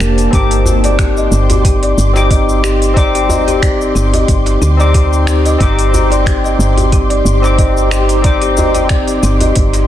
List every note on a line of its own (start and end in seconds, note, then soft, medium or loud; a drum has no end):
0.00 0.28 F1 loud
0.00 0.28 A#3 medium
0.00 0.29 A#3 medium
0.00 0.29 D4 medium
0.00 0.29 G4 medium
0.00 0.17 A#4 medium
0.00 0.29 C5 medium
0.00 0.30 D5 loud
0.00 0.29 A5 medium
0.00 0.30 A5 medium
0.00 finger snap medium
0.00 cabasa medium
0.18 open hi-hat soft
0.18 cabasa soft
0.31 1.28 G1 loud
0.31 2.10 C4 loud
0.31 2.11 D#4 medium
0.31 9.87 G4 medium
0.31 0.43 G4 medium
0.31 2.12 G4 medium
0.31 9.87 C6 medium
0.31 9.87 D6 medium
0.31 kick loud
0.31 open hi-hat medium
0.31 cabasa soft
0.35 2.12 D6 loud
0.51 open hi-hat soft
0.51 cabasa soft
0.66 djembe bass loud
0.66 cabasa medium
0.84 0.98 D5 medium
0.84 open hi-hat soft
0.84 djembe tone medium
0.84 cabasa soft
0.99 1.09 G4 medium
0.99 finger snap medium
0.99 kick loud
0.99 open hi-hat medium
0.99 djembe slap medium
0.99 cabasa soft
1.17 1.31 D#5 medium
1.17 cabasa soft
1.31 1.94 G1 medium
1.31 cabasa medium
1.50 open hi-hat soft
1.50 djembe bass medium
1.50 cabasa soft
1.65 1.75 G4 medium
1.65 kick loud
1.65 open hi-hat medium
1.65 cabasa soft
1.83 1.92 D5 medium
1.83 open hi-hat soft
1.98 3.92 G1 loud
1.98 cabasa medium
2.13 2.92 C4 medium
2.13 2.93 D#4 medium
2.13 2.30 G4 medium
2.13 2.93 G4 medium
2.13 2.94 D6 loud
2.13 djembe slap medium
2.13 cabasa soft
2.31 2.41 D#5 medium
2.31 kick loud
2.31 open hi-hat medium
2.31 cabasa soft
2.48 djembe tone soft
2.48 cabasa soft
2.64 2.95 G4 loud
2.64 finger snap medium
2.64 cabasa medium
2.82 open hi-hat soft
2.82 cabasa soft
2.94 4.74 C4 loud
2.94 4.75 D#4 medium
2.94 4.75 G4 medium
2.94 3.14 D5 loud
2.94 kick medium
2.94 open hi-hat medium
2.94 cabasa soft
2.98 4.76 D6 loud
3.15 3.28 G4 medium
3.15 open hi-hat soft
3.15 cabasa soft
3.29 3.40 D#5 medium
3.29 djembe bass medium
3.29 cabasa medium
3.48 3.62 G4 medium
3.48 open hi-hat soft
3.48 djembe tone medium
3.48 cabasa soft
3.62 3.73 D5 medium
3.62 finger snap medium
3.62 kick loud
3.62 open hi-hat medium
3.62 djembe slap medium
3.62 cabasa soft
3.81 cabasa soft
3.95 4.24 G1 medium
3.95 4.06 G4 medium
3.95 djembe tone soft
3.95 cabasa medium
4.14 4.22 D#5 medium
4.14 open hi-hat soft
4.14 djembe bass medium
4.14 cabasa soft
4.28 4.57 G1 medium
4.28 kick loud
4.28 open hi-hat medium
4.28 cabasa soft
4.46 open hi-hat soft
4.46 djembe slap medium
4.62 5.57 D2 medium
4.62 4.79 G4 medium
4.62 djembe tone medium
4.62 cabasa medium
4.77 5.56 C4 medium
4.77 5.57 D#4 medium
4.77 5.57 G4 medium
4.77 4.94 D5 medium
4.77 5.58 D6 loud
4.77 cabasa soft
4.94 5.11 G4 loud
4.94 kick loud
4.94 open hi-hat medium
4.94 cabasa soft
5.13 cabasa soft
5.27 finger snap medium
5.27 cabasa medium
5.45 5.54 D#5 medium
5.45 open hi-hat soft
5.45 cabasa soft
5.59 6.56 G1 loud
5.59 7.38 C4 loud
5.59 7.39 D#4 medium
5.59 5.71 G4 medium
5.59 7.39 G4 medium
5.59 7.40 D6 loud
5.59 kick loud
5.59 open hi-hat medium
5.59 cabasa soft
5.79 open hi-hat soft
5.79 cabasa soft
5.94 djembe bass medium
5.94 cabasa medium
6.11 6.26 D5 medium
6.11 open hi-hat soft
6.11 djembe tone medium
6.11 cabasa soft
6.26 6.37 G4 medium
6.26 finger snap medium
6.26 kick loud
6.26 open hi-hat medium
6.26 djembe slap medium
6.26 cabasa soft
6.44 6.59 D#5 medium
6.44 cabasa soft
6.59 7.21 G1 loud
6.59 cabasa medium
6.78 open hi-hat soft
6.78 djembe bass medium
6.78 cabasa soft
6.92 7.03 G4 medium
6.92 kick loud
6.92 open hi-hat medium
6.92 cabasa soft
7.10 7.19 D5 medium
7.10 open hi-hat soft
7.25 9.19 G1 loud
7.25 cabasa medium
7.42 8.20 C4 medium
7.42 8.21 D#4 medium
7.42 7.57 G4 medium
7.42 8.21 G4 medium
7.42 8.22 D6 loud
7.42 djembe slap medium
7.42 cabasa soft
7.58 7.68 D#5 medium
7.58 kick loud
7.58 open hi-hat medium
7.58 cabasa soft
7.77 djembe tone soft
7.77 cabasa soft
7.91 8.23 G4 loud
7.91 finger snap medium
7.91 cabasa medium
8.09 open hi-hat soft
8.09 cabasa soft
8.22 9.87 C4 medium
8.22 9.87 D#4 medium
8.22 9.87 G4 medium
8.22 8.41 D5 loud
8.22 kick medium
8.22 open hi-hat medium
8.22 cabasa soft
8.26 9.87 D6 loud
8.42 8.56 G4 medium
8.42 open hi-hat soft
8.42 cabasa soft
8.57 8.67 D#5 medium
8.57 djembe bass medium
8.57 cabasa medium
8.75 8.89 G4 medium
8.75 open hi-hat soft
8.75 djembe tone medium
8.75 cabasa soft
8.89 9.00 D5 medium
8.89 finger snap medium
8.89 kick loud
8.89 open hi-hat medium
8.89 djembe slap medium
8.89 cabasa soft
9.08 open hi-hat soft
9.08 cabasa soft
9.23 9.51 G1 medium
9.23 9.33 G4 medium
9.23 djembe tone soft
9.23 cabasa medium
9.41 9.50 D#5 medium
9.41 open hi-hat soft
9.41 djembe bass medium
9.41 cabasa soft
9.56 9.87 G1 medium
9.56 kick loud
9.56 open hi-hat medium
9.56 cabasa soft
9.73 open hi-hat soft
9.73 djembe slap medium
9.73 cabasa soft